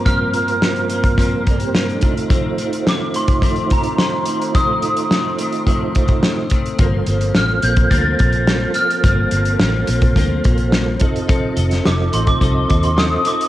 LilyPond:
<<
  \new Staff \with { instrumentName = "Glockenspiel" } { \time 4/4 \key g \minor \tempo 4 = 107 f'''4 r2. | r4 d'''8 c'''4 bes''8 c'''4 | ees'''4 r2. | r4 f'''8 g'''8 a'''4. f'''8~ |
f'''8 r2. r8 | r4 d'''8 c'''16 d'''8. d'''16 c'''16 ees'''8 d'''8 | }
  \new Staff \with { instrumentName = "Tonewheel organ" } { \time 4/4 \key g \minor << { r2 r8 <a' d''>16 <g' c''>16 <f' bes'>16 <d' a'>8 r16 | r1 | r1 | r1 |
r1 | r1 | } \\ { <g, bes c' f' bes'>2.~ <g, bes c' f' bes'>8 <a ees' f' c''>8~ | <a ees' f' c''>1~ | <a ees' f' c''>2.~ <a ees' f' c''>8 r8 | <bes f' a' bes' c''>1~ |
<bes f' a' bes' c''>2.~ <bes f' a' bes' c''>8 <c' f' a' ees''>8~ | <c' f' a' ees''>1 | } >> }
  \new Staff \with { instrumentName = "Clean electric guitar" } { \time 4/4 \key g \minor <g, f bes c'>8 <f bes c'>8 <g, f bes c'>8 <f bes c'>8 <g, f bes c'>8 <f bes c'>8 <g, f bes c'>8 <ees a c'>8 | <f, ees a c'>8 <ees a c'>8 <f, ees a c'>8 <ees a c'>8 <f, ees a c'>8 <ees a c'>8 <f, ees a c'>8 <ees a c'>8 | <f, ees a c'>8 <ees a c'>8 <f, ees a c'>8 <ees a c'>8 <f, ees a c'>8 <ees a c'>8 <f, ees a c'>8 <ees a c'>8 | <g, f bes c'>8 <f bes c'>8 <g, f bes c'>8 <f bes c'>8 <g, f bes c'>8 <f bes c'>8 <g, f bes c'>8 <f bes c'>8 |
<g, f bes c'>8 <f bes c'>8 <g, f bes c'>8 <f bes c'>8 <g, f bes c'>8 <f bes c'>8 <g, f bes c'>8 <c' ees' a'>8 | <f c' ees' a'>8 <c' ees' a'>8 <f c' ees' a'>8 <c' ees' a'>8 <f c' ees' a'>8 <c' ees' a'>8 <f c' ees' a'>8 <c' ees' a'>8 | }
  \new Staff \with { instrumentName = "Fingered electric bass" } { \clef bass \time 4/4 \key g \minor r1 | r1 | r1 | g,,8 g,,8 a,,8 bes,,8 d,8 bes,,4 r8 |
g,,8 g,,8 a,,8 bes,,8 d,8 bes,,4 f,,8~ | f,,8 f,,8 f,,8 a,,8 c,8 ees,4 r8 | }
  \new DrumStaff \with { instrumentName = "Drums" } \drummode { \time 4/4 <hh bd>8 hh16 hh16 sn16 hh16 hh16 <hh bd>16 <hh bd>8 <hh bd>16 hh16 sn16 hh16 <hh bd>16 hh16 | <hh bd>8 hh16 hh16 sn8 hh16 <hh bd>16 <hh bd>16 hh16 <hh bd>16 hh16 sn8 hh16 hh16 | <hh bd>8 hh16 hh16 sn8 hh16 hh16 <hh bd>8 <hh bd>16 <hh bd>16 sn8 <hh bd>16 hh16 | <hh bd>8 hh16 hh16 sn8 hh16 <hh bd>16 <hh bd>8 <hh bd>16 hh16 sn8 hh16 hh16 |
<hh bd>8 hh16 hh16 sn8 hh16 <hh bd>16 <hh bd>8 <hh bd>16 hh16 sn8 <hh bd>16 hh16 | <hh bd>8 hh16 <hh sn>16 sn8 hh16 <hh bd>16 <hh bd>8 <hh bd>16 hh16 sn8 hh16 hh16 | }
>>